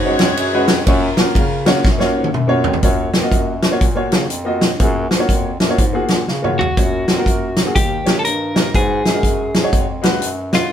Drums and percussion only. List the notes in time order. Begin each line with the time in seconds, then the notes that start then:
0.19 snare, ride
0.37 ride
0.68 snare, ride
0.87 kick, ride
1.17 snare, ride
1.35 kick, ride
1.66 snare, ride
1.85 kick, snare
2.00 snare
2.24 high tom
2.34 mid tom
2.64 floor tom
2.73 floor tom
2.83 kick, closed hi-hat
3.14 snare, closed hi-hat
3.32 kick, closed hi-hat
3.62 snare, closed hi-hat
3.81 kick, closed hi-hat
4.12 snare, closed hi-hat
4.30 closed hi-hat
4.61 snare, closed hi-hat
4.80 kick, closed hi-hat
5.11 snare, closed hi-hat
5.29 kick, closed hi-hat
5.60 snare, closed hi-hat
5.78 kick, closed hi-hat
6.08 snare, closed hi-hat
6.28 snare
6.44 mid tom
6.61 floor tom
6.77 kick, closed hi-hat
7.08 snare, closed hi-hat
7.26 kick, closed hi-hat
7.56 snare, closed hi-hat
7.76 kick, closed hi-hat
8.06 snare, closed hi-hat
8.25 closed hi-hat
8.56 snare, closed hi-hat
8.75 kick, closed hi-hat
9.06 snare, closed hi-hat
9.23 kick, closed hi-hat
9.54 snare, closed hi-hat
9.73 kick, closed hi-hat
10.03 snare, closed hi-hat
10.22 closed hi-hat
10.53 snare, closed hi-hat